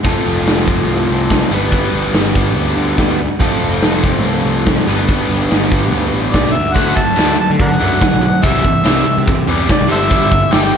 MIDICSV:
0, 0, Header, 1, 5, 480
1, 0, Start_track
1, 0, Tempo, 419580
1, 57, Time_signature, 4, 2, 24, 8
1, 12324, End_track
2, 0, Start_track
2, 0, Title_t, "Harmonica"
2, 0, Program_c, 0, 22
2, 7226, Note_on_c, 0, 74, 80
2, 7461, Note_on_c, 0, 76, 86
2, 7478, Note_off_c, 0, 74, 0
2, 7702, Note_on_c, 0, 78, 98
2, 7719, Note_off_c, 0, 76, 0
2, 7953, Note_off_c, 0, 78, 0
2, 7959, Note_on_c, 0, 76, 72
2, 7959, Note_on_c, 0, 78, 72
2, 7959, Note_on_c, 0, 81, 104
2, 8030, Note_off_c, 0, 76, 0
2, 8032, Note_off_c, 0, 78, 0
2, 8415, Note_off_c, 0, 81, 0
2, 8472, Note_on_c, 0, 81, 93
2, 8577, Note_off_c, 0, 81, 0
2, 8708, Note_on_c, 0, 70, 66
2, 8708, Note_on_c, 0, 74, 66
2, 8708, Note_on_c, 0, 78, 94
2, 8793, Note_off_c, 0, 70, 0
2, 8806, Note_off_c, 0, 74, 0
2, 9645, Note_on_c, 0, 76, 90
2, 9662, Note_off_c, 0, 78, 0
2, 10611, Note_off_c, 0, 76, 0
2, 11106, Note_on_c, 0, 74, 86
2, 11325, Note_off_c, 0, 74, 0
2, 11342, Note_on_c, 0, 69, 65
2, 11342, Note_on_c, 0, 72, 65
2, 11342, Note_on_c, 0, 76, 93
2, 11428, Note_off_c, 0, 69, 0
2, 11434, Note_off_c, 0, 72, 0
2, 12034, Note_on_c, 0, 79, 98
2, 12051, Note_off_c, 0, 76, 0
2, 12324, Note_off_c, 0, 79, 0
2, 12324, End_track
3, 0, Start_track
3, 0, Title_t, "Overdriven electric guitar"
3, 0, Program_c, 1, 29
3, 40, Note_on_c, 1, 53, 70
3, 49, Note_on_c, 1, 57, 70
3, 60, Note_on_c, 1, 60, 71
3, 60, Note_on_c, 1, 65, 79
3, 68, Note_on_c, 1, 69, 74
3, 1716, Note_off_c, 1, 53, 0
3, 1721, Note_off_c, 1, 57, 0
3, 1726, Note_off_c, 1, 60, 0
3, 1726, Note_off_c, 1, 65, 0
3, 1730, Note_off_c, 1, 69, 0
3, 1730, Note_on_c, 1, 55, 74
3, 1736, Note_on_c, 1, 62, 80
3, 1748, Note_on_c, 1, 59, 90
3, 1757, Note_on_c, 1, 71, 98
3, 3642, Note_off_c, 1, 55, 0
3, 3644, Note_off_c, 1, 62, 0
3, 3651, Note_off_c, 1, 59, 0
3, 3655, Note_off_c, 1, 71, 0
3, 3884, Note_on_c, 1, 53, 77
3, 3892, Note_on_c, 1, 57, 73
3, 3905, Note_on_c, 1, 60, 75
3, 3906, Note_on_c, 1, 65, 80
3, 3913, Note_on_c, 1, 69, 81
3, 5558, Note_off_c, 1, 53, 0
3, 5562, Note_off_c, 1, 57, 0
3, 5567, Note_on_c, 1, 55, 87
3, 5569, Note_off_c, 1, 60, 0
3, 5569, Note_off_c, 1, 65, 0
3, 5573, Note_off_c, 1, 69, 0
3, 5584, Note_on_c, 1, 62, 82
3, 5589, Note_on_c, 1, 59, 95
3, 5595, Note_on_c, 1, 71, 87
3, 7479, Note_off_c, 1, 55, 0
3, 7487, Note_off_c, 1, 62, 0
3, 7490, Note_off_c, 1, 59, 0
3, 7493, Note_off_c, 1, 71, 0
3, 7714, Note_on_c, 1, 50, 73
3, 7729, Note_on_c, 1, 54, 86
3, 7731, Note_on_c, 1, 57, 85
3, 7953, Note_off_c, 1, 50, 0
3, 7957, Note_off_c, 1, 54, 0
3, 7961, Note_off_c, 1, 57, 0
3, 7970, Note_on_c, 1, 54, 67
3, 7973, Note_on_c, 1, 50, 60
3, 8178, Note_off_c, 1, 50, 0
3, 8181, Note_off_c, 1, 54, 0
3, 8192, Note_on_c, 1, 50, 78
3, 8195, Note_on_c, 1, 54, 81
3, 8195, Note_on_c, 1, 57, 92
3, 8412, Note_off_c, 1, 50, 0
3, 8422, Note_off_c, 1, 54, 0
3, 8426, Note_on_c, 1, 50, 67
3, 8433, Note_off_c, 1, 57, 0
3, 8436, Note_on_c, 1, 54, 70
3, 8659, Note_off_c, 1, 50, 0
3, 8664, Note_off_c, 1, 54, 0
3, 8687, Note_on_c, 1, 50, 68
3, 8689, Note_on_c, 1, 54, 69
3, 8903, Note_off_c, 1, 50, 0
3, 8910, Note_off_c, 1, 54, 0
3, 8916, Note_on_c, 1, 50, 90
3, 8929, Note_on_c, 1, 54, 94
3, 8934, Note_on_c, 1, 57, 99
3, 9153, Note_off_c, 1, 50, 0
3, 9153, Note_off_c, 1, 54, 0
3, 9162, Note_off_c, 1, 57, 0
3, 9166, Note_on_c, 1, 50, 71
3, 9166, Note_on_c, 1, 54, 69
3, 9381, Note_off_c, 1, 50, 0
3, 9383, Note_off_c, 1, 54, 0
3, 9394, Note_on_c, 1, 50, 61
3, 9397, Note_on_c, 1, 54, 76
3, 9623, Note_off_c, 1, 50, 0
3, 9624, Note_off_c, 1, 54, 0
3, 9634, Note_on_c, 1, 48, 81
3, 9637, Note_on_c, 1, 52, 75
3, 9649, Note_on_c, 1, 55, 88
3, 9869, Note_off_c, 1, 48, 0
3, 9873, Note_off_c, 1, 52, 0
3, 9879, Note_off_c, 1, 55, 0
3, 9883, Note_on_c, 1, 48, 63
3, 9889, Note_on_c, 1, 52, 72
3, 10095, Note_off_c, 1, 48, 0
3, 10104, Note_off_c, 1, 52, 0
3, 10109, Note_on_c, 1, 48, 87
3, 10118, Note_on_c, 1, 52, 90
3, 10121, Note_on_c, 1, 55, 92
3, 10339, Note_off_c, 1, 48, 0
3, 10346, Note_off_c, 1, 52, 0
3, 10352, Note_on_c, 1, 48, 66
3, 10355, Note_off_c, 1, 55, 0
3, 10359, Note_on_c, 1, 52, 70
3, 10581, Note_off_c, 1, 48, 0
3, 10585, Note_off_c, 1, 52, 0
3, 10607, Note_on_c, 1, 48, 73
3, 10615, Note_on_c, 1, 52, 79
3, 10826, Note_off_c, 1, 48, 0
3, 10832, Note_off_c, 1, 52, 0
3, 10839, Note_on_c, 1, 48, 91
3, 10851, Note_on_c, 1, 52, 95
3, 10858, Note_on_c, 1, 55, 95
3, 11074, Note_off_c, 1, 48, 0
3, 11075, Note_off_c, 1, 52, 0
3, 11083, Note_off_c, 1, 55, 0
3, 11087, Note_on_c, 1, 48, 76
3, 11088, Note_on_c, 1, 52, 78
3, 11305, Note_off_c, 1, 48, 0
3, 11306, Note_on_c, 1, 43, 93
3, 11309, Note_off_c, 1, 52, 0
3, 11309, Note_on_c, 1, 50, 84
3, 11313, Note_on_c, 1, 55, 101
3, 11542, Note_off_c, 1, 43, 0
3, 11543, Note_off_c, 1, 50, 0
3, 11548, Note_off_c, 1, 55, 0
3, 11556, Note_on_c, 1, 43, 75
3, 11557, Note_on_c, 1, 50, 94
3, 11562, Note_on_c, 1, 55, 96
3, 11786, Note_off_c, 1, 50, 0
3, 11787, Note_off_c, 1, 43, 0
3, 11795, Note_off_c, 1, 55, 0
3, 11800, Note_on_c, 1, 50, 70
3, 11801, Note_on_c, 1, 43, 68
3, 12008, Note_off_c, 1, 43, 0
3, 12021, Note_off_c, 1, 50, 0
3, 12022, Note_on_c, 1, 43, 82
3, 12035, Note_on_c, 1, 50, 81
3, 12041, Note_on_c, 1, 55, 82
3, 12244, Note_off_c, 1, 43, 0
3, 12252, Note_off_c, 1, 50, 0
3, 12257, Note_on_c, 1, 43, 63
3, 12266, Note_on_c, 1, 50, 78
3, 12274, Note_off_c, 1, 55, 0
3, 12324, Note_off_c, 1, 43, 0
3, 12324, Note_off_c, 1, 50, 0
3, 12324, End_track
4, 0, Start_track
4, 0, Title_t, "Picked electric bass"
4, 0, Program_c, 2, 34
4, 60, Note_on_c, 2, 29, 96
4, 154, Note_off_c, 2, 29, 0
4, 298, Note_on_c, 2, 29, 72
4, 488, Note_off_c, 2, 29, 0
4, 531, Note_on_c, 2, 29, 79
4, 1012, Note_off_c, 2, 29, 0
4, 1012, Note_on_c, 2, 36, 83
4, 1205, Note_off_c, 2, 36, 0
4, 1250, Note_on_c, 2, 36, 79
4, 1634, Note_off_c, 2, 36, 0
4, 1729, Note_on_c, 2, 31, 80
4, 2114, Note_off_c, 2, 31, 0
4, 2212, Note_on_c, 2, 31, 76
4, 2405, Note_off_c, 2, 31, 0
4, 2447, Note_on_c, 2, 31, 86
4, 2933, Note_off_c, 2, 31, 0
4, 2933, Note_on_c, 2, 38, 81
4, 3126, Note_off_c, 2, 38, 0
4, 3172, Note_on_c, 2, 38, 81
4, 3746, Note_off_c, 2, 38, 0
4, 3895, Note_on_c, 2, 29, 90
4, 3992, Note_off_c, 2, 29, 0
4, 4143, Note_on_c, 2, 29, 79
4, 4332, Note_off_c, 2, 29, 0
4, 4379, Note_on_c, 2, 29, 83
4, 4853, Note_off_c, 2, 29, 0
4, 4853, Note_on_c, 2, 36, 76
4, 5046, Note_off_c, 2, 36, 0
4, 5088, Note_on_c, 2, 36, 77
4, 5473, Note_off_c, 2, 36, 0
4, 5578, Note_on_c, 2, 31, 89
4, 5959, Note_off_c, 2, 31, 0
4, 6058, Note_on_c, 2, 31, 77
4, 6249, Note_off_c, 2, 31, 0
4, 6293, Note_on_c, 2, 31, 79
4, 6773, Note_off_c, 2, 31, 0
4, 6773, Note_on_c, 2, 38, 79
4, 6966, Note_off_c, 2, 38, 0
4, 7012, Note_on_c, 2, 33, 79
4, 7232, Note_off_c, 2, 33, 0
4, 7259, Note_on_c, 2, 35, 83
4, 7476, Note_off_c, 2, 35, 0
4, 7493, Note_on_c, 2, 38, 76
4, 7713, Note_off_c, 2, 38, 0
4, 7731, Note_on_c, 2, 38, 84
4, 7925, Note_off_c, 2, 38, 0
4, 8222, Note_on_c, 2, 38, 85
4, 8411, Note_off_c, 2, 38, 0
4, 8581, Note_on_c, 2, 50, 80
4, 8866, Note_off_c, 2, 50, 0
4, 8945, Note_on_c, 2, 42, 89
4, 9133, Note_off_c, 2, 42, 0
4, 9300, Note_on_c, 2, 35, 83
4, 9489, Note_off_c, 2, 35, 0
4, 9654, Note_on_c, 2, 36, 91
4, 9846, Note_off_c, 2, 36, 0
4, 10136, Note_on_c, 2, 36, 81
4, 10327, Note_off_c, 2, 36, 0
4, 10500, Note_on_c, 2, 48, 89
4, 10784, Note_off_c, 2, 48, 0
4, 10846, Note_on_c, 2, 40, 92
4, 11041, Note_off_c, 2, 40, 0
4, 11217, Note_on_c, 2, 36, 87
4, 11312, Note_off_c, 2, 36, 0
4, 11333, Note_on_c, 2, 31, 83
4, 11904, Note_off_c, 2, 31, 0
4, 12054, Note_on_c, 2, 31, 89
4, 12245, Note_off_c, 2, 31, 0
4, 12324, End_track
5, 0, Start_track
5, 0, Title_t, "Drums"
5, 49, Note_on_c, 9, 42, 66
5, 53, Note_on_c, 9, 36, 91
5, 163, Note_off_c, 9, 42, 0
5, 167, Note_off_c, 9, 36, 0
5, 297, Note_on_c, 9, 42, 54
5, 411, Note_off_c, 9, 42, 0
5, 536, Note_on_c, 9, 42, 65
5, 545, Note_on_c, 9, 38, 93
5, 650, Note_off_c, 9, 42, 0
5, 660, Note_off_c, 9, 38, 0
5, 772, Note_on_c, 9, 42, 50
5, 774, Note_on_c, 9, 36, 78
5, 886, Note_off_c, 9, 42, 0
5, 888, Note_off_c, 9, 36, 0
5, 1013, Note_on_c, 9, 42, 67
5, 1128, Note_off_c, 9, 42, 0
5, 1248, Note_on_c, 9, 42, 55
5, 1363, Note_off_c, 9, 42, 0
5, 1492, Note_on_c, 9, 36, 70
5, 1492, Note_on_c, 9, 42, 72
5, 1502, Note_on_c, 9, 38, 93
5, 1606, Note_off_c, 9, 36, 0
5, 1607, Note_off_c, 9, 42, 0
5, 1616, Note_off_c, 9, 38, 0
5, 1729, Note_on_c, 9, 42, 52
5, 1844, Note_off_c, 9, 42, 0
5, 1960, Note_on_c, 9, 42, 73
5, 1970, Note_on_c, 9, 36, 89
5, 2074, Note_off_c, 9, 42, 0
5, 2085, Note_off_c, 9, 36, 0
5, 2213, Note_on_c, 9, 42, 60
5, 2328, Note_off_c, 9, 42, 0
5, 2446, Note_on_c, 9, 42, 77
5, 2455, Note_on_c, 9, 38, 93
5, 2560, Note_off_c, 9, 42, 0
5, 2569, Note_off_c, 9, 38, 0
5, 2687, Note_on_c, 9, 42, 54
5, 2693, Note_on_c, 9, 36, 75
5, 2801, Note_off_c, 9, 42, 0
5, 2808, Note_off_c, 9, 36, 0
5, 2929, Note_on_c, 9, 42, 77
5, 3043, Note_off_c, 9, 42, 0
5, 3170, Note_on_c, 9, 42, 60
5, 3284, Note_off_c, 9, 42, 0
5, 3408, Note_on_c, 9, 42, 73
5, 3411, Note_on_c, 9, 36, 72
5, 3417, Note_on_c, 9, 38, 89
5, 3522, Note_off_c, 9, 42, 0
5, 3525, Note_off_c, 9, 36, 0
5, 3531, Note_off_c, 9, 38, 0
5, 3657, Note_on_c, 9, 42, 54
5, 3771, Note_off_c, 9, 42, 0
5, 3894, Note_on_c, 9, 42, 72
5, 3896, Note_on_c, 9, 36, 94
5, 4008, Note_off_c, 9, 42, 0
5, 4010, Note_off_c, 9, 36, 0
5, 4136, Note_on_c, 9, 42, 57
5, 4251, Note_off_c, 9, 42, 0
5, 4367, Note_on_c, 9, 42, 73
5, 4376, Note_on_c, 9, 38, 93
5, 4481, Note_off_c, 9, 42, 0
5, 4491, Note_off_c, 9, 38, 0
5, 4618, Note_on_c, 9, 36, 76
5, 4620, Note_on_c, 9, 42, 53
5, 4732, Note_off_c, 9, 36, 0
5, 4734, Note_off_c, 9, 42, 0
5, 4865, Note_on_c, 9, 42, 70
5, 4979, Note_off_c, 9, 42, 0
5, 5098, Note_on_c, 9, 42, 53
5, 5212, Note_off_c, 9, 42, 0
5, 5333, Note_on_c, 9, 42, 70
5, 5339, Note_on_c, 9, 36, 71
5, 5342, Note_on_c, 9, 38, 104
5, 5448, Note_off_c, 9, 42, 0
5, 5454, Note_off_c, 9, 36, 0
5, 5457, Note_off_c, 9, 38, 0
5, 5590, Note_on_c, 9, 42, 54
5, 5704, Note_off_c, 9, 42, 0
5, 5820, Note_on_c, 9, 36, 100
5, 5821, Note_on_c, 9, 42, 72
5, 5934, Note_off_c, 9, 36, 0
5, 5935, Note_off_c, 9, 42, 0
5, 6055, Note_on_c, 9, 42, 55
5, 6170, Note_off_c, 9, 42, 0
5, 6303, Note_on_c, 9, 42, 77
5, 6312, Note_on_c, 9, 38, 99
5, 6417, Note_off_c, 9, 42, 0
5, 6426, Note_off_c, 9, 38, 0
5, 6540, Note_on_c, 9, 36, 78
5, 6543, Note_on_c, 9, 42, 58
5, 6655, Note_off_c, 9, 36, 0
5, 6658, Note_off_c, 9, 42, 0
5, 6786, Note_on_c, 9, 42, 86
5, 6901, Note_off_c, 9, 42, 0
5, 7023, Note_on_c, 9, 42, 57
5, 7137, Note_off_c, 9, 42, 0
5, 7248, Note_on_c, 9, 42, 75
5, 7254, Note_on_c, 9, 36, 82
5, 7258, Note_on_c, 9, 38, 97
5, 7363, Note_off_c, 9, 42, 0
5, 7368, Note_off_c, 9, 36, 0
5, 7372, Note_off_c, 9, 38, 0
5, 7490, Note_on_c, 9, 42, 55
5, 7604, Note_off_c, 9, 42, 0
5, 7727, Note_on_c, 9, 49, 96
5, 7730, Note_on_c, 9, 36, 91
5, 7842, Note_off_c, 9, 49, 0
5, 7844, Note_off_c, 9, 36, 0
5, 7972, Note_on_c, 9, 36, 72
5, 8086, Note_off_c, 9, 36, 0
5, 8216, Note_on_c, 9, 42, 60
5, 8225, Note_on_c, 9, 38, 100
5, 8330, Note_off_c, 9, 42, 0
5, 8339, Note_off_c, 9, 38, 0
5, 8685, Note_on_c, 9, 42, 58
5, 8689, Note_on_c, 9, 36, 104
5, 8800, Note_off_c, 9, 42, 0
5, 8804, Note_off_c, 9, 36, 0
5, 8815, Note_on_c, 9, 38, 30
5, 8929, Note_off_c, 9, 38, 0
5, 9167, Note_on_c, 9, 42, 56
5, 9169, Note_on_c, 9, 36, 79
5, 9176, Note_on_c, 9, 38, 92
5, 9282, Note_off_c, 9, 42, 0
5, 9283, Note_off_c, 9, 36, 0
5, 9291, Note_off_c, 9, 38, 0
5, 9650, Note_on_c, 9, 36, 104
5, 9651, Note_on_c, 9, 42, 62
5, 9765, Note_off_c, 9, 36, 0
5, 9765, Note_off_c, 9, 42, 0
5, 9891, Note_on_c, 9, 36, 74
5, 10005, Note_off_c, 9, 36, 0
5, 10123, Note_on_c, 9, 42, 64
5, 10132, Note_on_c, 9, 38, 103
5, 10237, Note_off_c, 9, 42, 0
5, 10246, Note_off_c, 9, 38, 0
5, 10611, Note_on_c, 9, 36, 111
5, 10617, Note_on_c, 9, 42, 65
5, 10726, Note_off_c, 9, 36, 0
5, 10731, Note_off_c, 9, 42, 0
5, 11090, Note_on_c, 9, 36, 81
5, 11091, Note_on_c, 9, 42, 64
5, 11100, Note_on_c, 9, 38, 98
5, 11205, Note_off_c, 9, 36, 0
5, 11205, Note_off_c, 9, 42, 0
5, 11215, Note_off_c, 9, 38, 0
5, 11557, Note_on_c, 9, 42, 60
5, 11566, Note_on_c, 9, 36, 96
5, 11671, Note_off_c, 9, 42, 0
5, 11680, Note_off_c, 9, 36, 0
5, 11803, Note_on_c, 9, 36, 77
5, 11917, Note_off_c, 9, 36, 0
5, 12033, Note_on_c, 9, 42, 60
5, 12042, Note_on_c, 9, 38, 99
5, 12147, Note_off_c, 9, 42, 0
5, 12157, Note_off_c, 9, 38, 0
5, 12324, End_track
0, 0, End_of_file